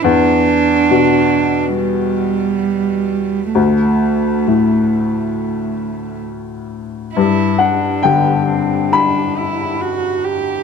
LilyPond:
<<
  \new Staff \with { instrumentName = "Cello" } { \time 4/4 \key g \major \tempo 4 = 68 d'2 g2 | a2. r4 | e'8 d'8 b8 c'8 d'8 e'8 fis'8 g'8 | }
  \new Staff \with { instrumentName = "Upright piano" } { \time 4/4 \key g \major r1 | r1 | r8 fis''8 g''4 b''2 | }
  \new Staff \with { instrumentName = "Upright piano" } { \clef bass \time 4/4 \key g \major e,4 b,2. | d,4 a,2. | g,4 d2. | }
>>